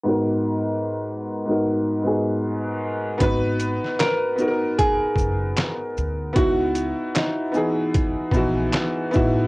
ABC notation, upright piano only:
X:1
M:4/4
L:1/16
Q:"Swing 16ths" 1/4=76
K:G#m
V:1 name="Upright piano"
[G,,B,DFA]6 z [G,,B,DFA]3 [G,,B,DFG]4- [G,,B,DFG] z | [B,DFB]4- [B,DFB] z [B,DFA]6- [B,DFA] z3 | [B,DEF]4- [B,DEF] z [E,B,DG]3 z [E,B,DF]3 z [B,DEF]2 |]